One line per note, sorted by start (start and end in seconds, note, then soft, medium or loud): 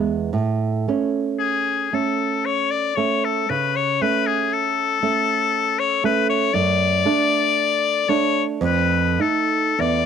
0.00 0.30 E2 medium
0.00 0.30 G#3 medium
0.00 0.30 B3 medium
0.33 0.85 A2 medium
0.88 1.88 A3 medium
0.88 1.89 C#4 medium
1.39 1.95 G#4 loud
1.93 2.92 A3 medium
1.93 2.93 C#4 medium
1.93 2.47 A4 medium
2.45 2.72 C#5 loud
2.71 2.98 D5 medium
2.96 3.45 A3 medium
2.96 3.45 C#4 medium
2.96 3.26 C#5 medium
3.25 3.52 A4 medium
3.50 3.99 C#3 medium
3.50 3.78 B4 medium
3.76 4.04 C#5 medium
4.01 4.99 A3 medium
4.01 4.99 C#4 medium
4.01 4.28 B4 loud
4.27 4.54 G#4 medium
4.53 5.81 A4 loud
5.03 6.00 A3 medium
5.03 6.00 C#4 medium
5.79 6.04 C#5 loud
6.04 6.50 A3 medium
6.04 6.50 C#4 medium
6.04 6.29 B4 loud
6.30 6.55 C#5 loud
6.54 7.03 F#2 medium
6.54 8.10 D5 loud
7.05 8.05 A3 medium
7.05 8.06 D4 medium
8.09 8.58 A3 medium
8.09 8.59 D4 medium
8.09 8.43 C#5 loud
8.61 9.17 F2 loud
8.65 9.23 B4 loud
9.19 9.74 A3 medium
9.19 9.74 D#4 medium
9.19 9.82 A4 loud
9.79 10.06 E2 medium
9.79 10.06 D5 loud